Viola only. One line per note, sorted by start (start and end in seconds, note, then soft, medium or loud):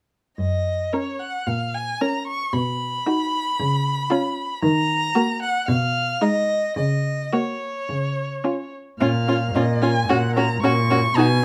0.93 1.34 C#4 soft
2.01 2.40 C#4 soft
3.06 3.46 D#4 medium
4.12 4.50 C#4 medium
5.16 5.55 A#3 medium
6.22 6.62 G#3 medium
7.33 7.75 A#3 soft
8.44 8.86 C#4 soft
9.01 9.09 C#4 medium
9.28 9.36 C#4 soft
9.55 9.63 C#4 soft
9.82 9.90 C#4 soft
10.10 10.18 C#4 soft
10.36 10.44 C#4 soft
10.63 10.71 C#4 medium
10.91 10.99 C#4 soft
11.17 11.25 D#4 medium